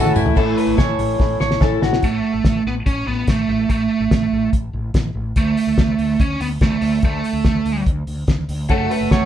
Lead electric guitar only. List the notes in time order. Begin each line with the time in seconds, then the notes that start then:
Already playing: A4
2.04 A3
2.67 B3
2.86 C#4
3.08 B3
3.29 A3
3.70 A3
5.37 A3
6.20 C#4
6.42 B3
6.62 A3
7.05 A3
8.71 A3